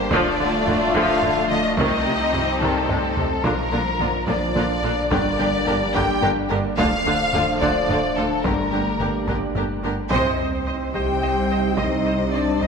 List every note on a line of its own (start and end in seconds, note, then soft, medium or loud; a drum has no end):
0.00 0.13 G1 medium
0.00 0.11 G3 medium
0.00 0.11 G4 medium
0.00 0.12 C5 loud
0.00 1.74 D5 medium
0.11 1.80 D1 medium
0.11 0.20 D2 medium
0.11 1.74 A2 medium
0.11 0.20 D3 medium
0.11 1.78 F3 medium
0.11 0.37 F3 medium
0.11 1.78 A3 medium
0.11 1.74 A3 medium
0.11 1.75 A3 medium
0.11 1.75 D4 medium
0.11 1.74 D4 medium
0.11 1.78 F4 medium
0.11 1.74 F4 medium
0.11 0.95 D5 medium
0.11 taiko loud
0.39 0.48 D2 medium
0.39 0.47 D3 medium
0.39 0.48 D3 medium
0.67 0.76 D2 medium
0.67 0.75 D3 medium
0.67 0.76 D3 medium
0.67 taiko low-mid medium
0.94 1.04 D2 loud
0.94 1.03 D3 medium
0.94 1.20 F3 loud
0.94 1.50 F5 loud
0.94 taiko medium
1.22 1.32 D2 medium
1.22 1.31 D3 medium
1.22 taiko low-mid medium
1.50 1.60 D2 medium
1.50 1.58 D3 medium
1.50 1.59 D3 medium
1.50 1.76 D#5 medium
1.77 3.46 C2 medium
1.77 1.87 C2 medium
1.77 3.13 C3 medium
1.77 1.86 C3 medium
1.77 2.04 D#3 medium
1.77 3.13 G3 medium
1.77 3.45 G3 medium
1.77 3.22 C4 medium
1.77 3.45 C4 medium
1.77 3.13 C4 medium
1.77 3.22 D#4 medium
1.77 3.45 D#4 medium
1.77 3.13 D#4 medium
1.77 3.22 G4 medium
1.77 3.45 C5 medium
1.77 2.59 D#5 medium
1.77 taiko loud
2.05 2.15 C2 soft
2.05 2.13 C3 medium
2.05 2.14 C3 soft
2.33 2.42 C2 soft
2.33 2.41 C3 soft
2.33 2.42 C3 soft
2.33 taiko low-mid medium
2.61 2.70 C2 medium
2.61 2.70 C3 medium
2.61 2.87 D#3 medium
2.61 3.43 A4 medium
2.61 taiko low-mid medium
2.89 2.97 C2 soft
2.89 2.98 C3 soft
2.89 2.98 C3 medium
2.89 taiko low-mid medium
3.16 3.25 C2 soft
3.16 3.24 C3 soft
3.16 3.25 C3 soft
3.16 taiko low medium
3.44 3.52 A#1 medium
3.44 5.13 A#1 medium
3.44 3.53 A#2 medium
3.44 6.74 D3 medium
3.44 3.53 D3 medium
3.44 5.07 F3 medium
3.44 5.12 F3 medium
3.44 6.74 A#3 medium
3.44 6.78 A#3 medium
3.44 6.74 D4 medium
3.44 3.53 D4 medium
3.44 8.44 D4 medium
3.44 3.53 F4 medium
3.44 4.28 A#4 medium
3.44 3.53 A#4 medium
3.44 8.43 D5 medium
3.44 taiko loud
3.72 3.80 A#1 medium
3.72 3.81 A#2 soft
3.72 3.80 D3 soft
3.72 3.80 D4 medium
3.72 3.81 F4 soft
3.72 3.80 A#4 soft
3.99 4.07 A#1 medium
3.99 4.08 A#2 medium
3.99 4.08 D3 soft
3.99 4.08 D4 soft
3.99 4.08 F4 medium
3.99 4.08 A#4 medium
3.99 taiko low-mid medium
4.27 4.35 A#1 medium
4.27 4.36 A#2 medium
4.27 4.35 D3 medium
4.27 4.35 D4 medium
4.27 4.36 F4 soft
4.27 4.36 A#4 medium
4.27 5.10 D5 medium
4.27 taiko medium
4.55 4.63 A#1 medium
4.55 4.64 A#2 medium
4.55 4.64 D3 medium
4.55 4.64 D4 medium
4.55 4.64 F4 medium
4.55 4.64 A#4 medium
4.55 taiko low-mid medium
4.83 4.91 A#1 medium
4.83 4.91 A#2 medium
4.83 4.92 D3 medium
4.83 4.92 D4 medium
4.83 4.92 F4 medium
4.83 4.91 A#4 medium
5.11 5.19 G1 medium
5.11 6.81 G1 medium
5.11 5.19 G2 medium
5.11 5.19 D3 medium
5.11 10.11 D3 medium
5.11 6.74 G3 medium
5.11 5.19 D4 medium
5.11 5.19 G4 medium
5.11 5.19 A#4 medium
5.11 5.93 D5 medium
5.11 taiko medium
5.38 5.47 G1 medium
5.38 5.47 G2 medium
5.38 5.47 D3 medium
5.38 5.47 D4 medium
5.38 5.46 G4 medium
5.38 5.46 A#4 medium
5.66 5.75 G1 medium
5.66 5.74 G2 medium
5.66 5.75 D3 medium
5.66 5.75 D4 medium
5.66 5.74 G4 medium
5.66 5.75 A#4 medium
5.66 taiko low-mid medium
5.94 6.03 G1 medium
5.94 6.02 G2 medium
5.94 6.03 D3 medium
5.94 6.03 D4 medium
5.94 6.03 G4 medium
5.94 6.03 A#4 medium
5.94 6.22 G5 medium
5.94 taiko medium
6.22 6.30 G1 medium
6.22 6.30 G2 medium
6.22 6.31 D3 medium
6.22 6.31 D4 medium
6.22 6.30 G4 medium
6.22 6.30 A#4 medium
6.22 taiko low-mid medium
6.49 6.58 G1 medium
6.49 6.59 G2 medium
6.49 6.58 D3 medium
6.49 6.58 D4 medium
6.49 6.57 G4 medium
6.49 6.57 A#4 medium
6.77 8.46 D1 medium
6.77 6.86 D2 medium
6.77 9.80 D3 medium
6.77 6.87 D3 medium
6.77 8.41 F3 medium
6.77 8.44 A3 medium
6.77 8.41 A3 medium
6.77 9.79 D4 medium
6.77 6.87 D4 medium
6.77 6.86 F4 medium
6.77 6.86 A4 medium
6.77 7.57 F5 loud
6.77 taiko loud
7.05 7.13 D2 medium
7.05 7.14 D2 medium
7.05 7.14 D3 medium
7.05 7.14 D4 medium
7.05 7.14 F4 medium
7.05 7.14 A4 medium
7.33 7.41 D2 medium
7.33 7.42 D2 medium
7.33 7.42 D3 medium
7.33 7.42 D4 medium
7.33 7.42 F4 medium
7.33 7.42 A4 medium
7.33 taiko low-mid medium
7.61 7.69 D2 medium
7.61 7.69 D3 medium
7.61 7.70 D4 medium
7.61 7.70 F4 medium
7.61 7.70 A4 medium
7.61 8.15 D5 loud
7.61 taiko medium
7.88 7.96 D2 medium
7.88 7.97 D2 medium
7.88 7.98 D3 medium
7.88 7.97 D4 medium
7.88 7.98 F4 medium
7.88 7.97 A4 medium
7.88 taiko low-mid medium
8.16 8.24 D2 medium
8.16 8.25 D2 medium
8.16 8.25 D3 medium
8.16 8.25 D4 medium
8.16 8.25 F4 medium
8.16 8.44 A4 medium
8.16 8.26 A4 soft
8.44 8.52 G1 medium
8.44 10.11 G1 medium
8.44 8.52 G2 medium
8.44 8.53 D3 medium
8.44 9.80 G3 medium
8.44 9.79 A#3 medium
8.44 10.11 A#3 medium
8.44 10.07 D4 medium
8.44 8.53 D4 medium
8.44 8.53 G4 medium
8.44 9.28 A#4 medium
8.44 8.53 A#4 medium
8.44 10.07 D5 medium
8.44 taiko medium
8.72 8.80 G1 medium
8.72 8.80 G2 soft
8.72 8.81 D3 soft
8.72 8.81 D4 soft
8.72 8.80 G4 soft
8.72 8.81 A#4 soft
9.00 9.08 G1 medium
9.00 9.08 G2 medium
9.00 9.08 D3 soft
9.00 9.08 D4 soft
9.00 9.08 G4 medium
9.00 9.08 A#4 soft
9.00 taiko low-mid medium
9.27 9.36 G1 medium
9.27 9.35 G2 medium
9.27 9.36 D3 soft
9.27 9.36 D4 soft
9.27 9.36 G4 soft
9.27 9.36 A#4 soft
9.27 taiko medium
9.55 9.64 G1 soft
9.55 9.64 G2 soft
9.55 9.64 D3 soft
9.55 9.64 D4 soft
9.55 9.64 G4 soft
9.55 9.64 A#4 soft
9.55 taiko low-mid medium
9.83 9.91 G1 medium
9.83 9.92 G2 medium
9.83 9.92 D3 soft
9.83 9.92 D4 medium
9.83 9.92 G4 soft
9.83 9.92 A#4 soft
10.10 10.82 C2 medium
10.10 12.67 C2 medium
10.10 10.83 C3 medium
10.10 12.67 G3 medium
10.10 10.90 C4 medium
10.10 12.67 C4 medium
10.10 12.67 D#4 medium
10.10 10.37 C5 medium
10.10 10.91 C5 medium
10.10 12.67 C5 medium
10.10 10.37 D#5 medium
10.10 taiko medium
10.10 sub drop medium
10.38 10.46 C5 soft
10.38 10.46 D#5 soft
10.38 10.47 D#5 soft
10.67 10.75 C5 soft
10.67 10.75 D#5 soft
10.94 11.68 C2 medium
10.94 11.68 C3 medium
10.94 11.78 G4 medium
10.94 11.02 C5 soft
10.94 11.02 D#5 soft
10.94 11.03 D#5 soft
10.94 11.76 G5 medium
10.94 taiko medium
11.22 11.30 C5 soft
11.22 11.30 D#5 soft
11.22 11.31 D#5 soft
11.50 11.59 C5 soft
11.50 11.58 D#5 soft
11.77 12.51 C2 medium
11.77 12.52 C3 medium
11.77 12.33 D#4 medium
11.77 11.85 C5 soft
11.77 12.33 D#5 medium
11.77 11.85 D#5 soft
11.77 11.86 D#5 medium
11.77 taiko medium
12.05 12.14 C5 soft
12.05 12.13 D#5 soft
12.05 12.14 D#5 soft
12.32 12.61 D4 medium
12.32 12.41 C5 soft
12.32 12.61 D5 medium
12.32 12.41 D#5 soft
12.32 12.42 D#5 soft
12.60 12.67 C2 medium
12.60 12.67 C3 medium
12.60 12.67 D#4 medium
12.60 12.67 C5 soft
12.60 12.67 D#5 medium
12.60 12.67 D#5 soft
12.60 taiko medium